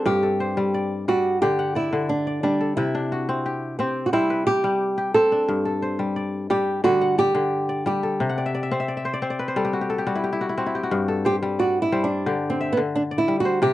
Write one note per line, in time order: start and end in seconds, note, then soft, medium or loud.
0.00 0.11 G3 medium
0.00 1.52 C4 medium
0.00 1.56 D4 medium
0.00 0.96 G4 medium
0.06 2.40 G2 medium
0.06 1.08 G4 medium
0.23 1.55 A4 medium
0.40 1.59 C5 medium
0.57 1.07 G3 medium
0.74 1.08 D5 medium
1.08 1.47 G3 medium
1.08 1.41 F#4 medium
1.08 1.75 D5 medium
1.42 1.91 D3 medium
1.42 1.76 G4 medium
1.42 2.83 G4 medium
1.59 2.50 F#5 medium
1.75 2.08 E4 medium
1.75 2.27 D5 medium
1.93 2.83 D3 medium
2.09 2.42 D4 medium
2.27 3.38 D5 medium
2.43 2.83 G3 medium
2.43 2.76 D4 medium
2.61 3.92 A4 medium
2.77 5.11 C3 medium
2.77 3.78 E4 medium
2.95 4.63 D4 medium
3.12 3.86 F#4 medium
3.29 3.79 C4 medium
3.46 3.79 G4 medium
3.79 4.07 C4 medium
3.79 4.13 C4 medium
3.79 4.46 G4 medium
4.06 4.12 F#4 medium
4.13 4.63 G3 medium
4.13 5.15 C4 medium
4.13 4.46 E4 medium
4.30 5.21 B4 medium
4.47 5.14 G4 medium
4.47 4.97 G4 medium
4.64 5.54 G3 medium
4.98 6.39 G4 medium
5.14 6.95 C4 medium
5.14 6.50 A4 medium
5.32 7.00 D4 medium
5.48 7.82 G2 medium
5.65 6.97 A4 medium
5.82 7.01 C5 medium
5.99 6.49 G3 medium
6.16 6.50 D5 medium
6.50 6.83 G3 medium
6.50 6.84 G4 medium
6.50 7.18 D5 medium
6.84 7.33 D3 medium
6.84 7.41 G3 medium
6.84 7.18 F#4 medium
7.01 7.92 F#5 medium
7.18 7.86 G4 medium
7.18 7.69 D5 medium
7.35 8.26 D3 medium
7.69 8.37 D5 medium
7.86 8.26 G3 medium
7.86 10.20 G4 medium
8.03 9.35 A4 medium
8.20 10.54 C3 medium
8.29 9.26 F#5 medium
8.38 8.54 D5 medium
8.46 8.62 E5 medium
8.55 8.88 D5 medium
8.63 8.79 E5 medium
8.71 9.22 C4 medium
8.71 9.05 C5 medium
8.80 8.97 E5 medium
8.88 9.13 D5 medium
8.97 10.00 E5 medium
9.05 9.21 C5 medium
9.14 9.30 D5 medium
9.22 10.57 C4 medium
9.22 9.45 C5 medium
9.30 10.41 D5 medium
9.39 10.63 B4 medium
9.48 10.67 C5 medium
9.56 10.05 G3 medium
9.56 9.89 A4 medium
9.65 9.81 G4 medium
9.73 10.04 F#4 medium
9.81 9.98 G4 medium
9.90 11.08 A4 medium
9.98 10.23 G4 medium
10.07 10.97 G3 medium
10.07 10.30 F#4 medium
10.15 10.32 E4 medium
10.24 10.47 G4 medium
10.33 10.49 E4 medium
10.41 10.57 F#4 medium
10.49 10.66 E4 medium
10.57 12.38 C4 medium
10.57 10.81 F#4 medium
10.66 12.23 E4 medium
10.75 12.16 G4 medium
10.83 11.48 F#4 medium
10.91 13.25 G2 medium
11.08 12.40 A4 medium
11.25 11.35 G4 medium
11.25 11.92 C5 medium
11.43 11.91 G3 medium
11.59 11.82 F#4 medium
11.59 12.70 D5 medium
11.82 12.05 E4 medium
11.92 12.32 G3 medium
11.92 13.11 C5 medium
12.04 12.51 D4 medium
12.26 12.76 D3 medium
12.26 13.68 G4 medium
12.50 12.73 C4 medium
12.61 13.64 E5 medium
12.72 12.79 B3 medium
12.77 13.68 D3 medium
12.95 13.02 D4 medium
13.11 13.73 D5 medium
13.18 13.40 E4 medium
13.28 13.68 G3 medium
13.40 13.61 F#4 medium
13.45 13.73 C5 medium
13.62 13.73 C3 medium
13.62 13.73 G4 loud